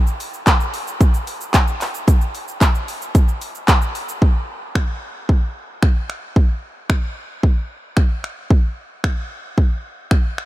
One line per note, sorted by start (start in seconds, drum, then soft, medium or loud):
0.07 shaker medium
0.20 open hi-hat medium
0.20 shaker soft
0.34 shaker medium
0.47 kick loud
0.47 clap loud
0.47 clap medium
0.47 closed hi-hat medium
0.47 shaker medium
0.60 shaker medium
0.74 open hi-hat medium
0.74 shaker medium
0.87 shaker medium
1.01 kick loud
1.01 closed hi-hat medium
1.01 shaker medium
1.14 shaker medium
1.27 open hi-hat medium
1.27 shaker medium
1.41 shaker medium
1.54 kick loud
1.54 clap medium
1.54 clap loud
1.54 closed hi-hat medium
1.54 shaker medium
1.68 shaker medium
1.81 clap medium
1.81 open hi-hat medium
1.81 shaker medium
1.95 shaker medium
2.08 kick loud
2.08 closed hi-hat medium
2.08 shaker medium
2.21 shaker medium
2.35 open hi-hat medium
2.35 shaker soft
2.48 shaker medium
2.61 kick loud
2.61 clap medium
2.61 clap loud
2.61 closed hi-hat medium
2.61 shaker medium
2.75 shaker medium
2.88 open hi-hat medium
2.88 shaker medium
3.02 shaker medium
3.15 kick loud
3.15 closed hi-hat medium
3.15 shaker medium
3.28 shaker medium
3.41 open hi-hat medium
3.41 shaker medium
3.55 shaker medium
3.68 kick loud
3.68 clap medium
3.68 clap loud
3.68 closed hi-hat medium
3.68 shaker medium
3.82 shaker medium
3.95 open hi-hat medium
3.95 shaker medium
4.09 shaker medium
4.22 kick loud
4.75 finger snap loud
4.75 kick loud
5.29 kick loud
5.83 finger snap loud
5.83 kick loud
6.10 finger snap medium
6.36 kick loud
6.90 finger snap loud
6.90 kick loud
7.43 kick loud
7.97 finger snap loud
7.97 kick loud
8.24 finger snap medium
8.50 kick loud
9.04 finger snap loud
9.04 kick loud
9.58 kick loud
10.11 finger snap loud
10.11 kick loud
10.38 finger snap medium